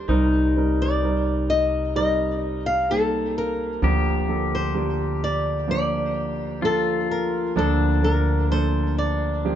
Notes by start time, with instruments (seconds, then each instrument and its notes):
Already playing: grand piano G3 D4 G4 A#4 C5, pedal steel guitar D4, nylon-string guitar C5
0.08 upright bass C2, grand piano C2 C3 G3 C4 D#4 A#4, pedal steel guitar D#4
0.56 grand piano G3 C4 D#4 A#4
0.82 nylon-string guitar D5
1.03 grand piano G3 C4 D#4 A#4
1.50 nylon-string guitar D#5
1.96 grand piano G3 C4 D#4 A#4, nylon-string guitar D#5
2.66 nylon-string guitar F5
2.90 grand piano G3 A#3 C4 D#4, nylon-string guitar A4
3.38 nylon-string guitar A#4
3.82 upright bass D2, grand piano D2 D3 F3 A#3 D4 A#4, pedal steel guitar G4
4.28 grand piano F3 A#3 D4 A4
4.55 nylon-string guitar C5
4.74 grand piano F3 A#3 D4 G4
5.24 nylon-string guitar D5
5.67 grand piano F3 A#3 D4 C5, nylon-string guitar D5
6.62 grand piano F3 A#3 D4 A4, pedal steel guitar F4, nylon-string guitar A4
7.11 nylon-string guitar A#4
7.56 upright bass D2, grand piano D2 D3 F3 A#3 D4 A4, pedal steel guitar D4, nylon-string guitar A4
8.03 grand piano F3 A#3 D4 A#4, nylon-string guitar A#4
8.50 grand piano F3 A#3 D4 A4, nylon-string guitar C5
8.98 nylon-string guitar D5
9.45 grand piano F3 A#3 D4 G4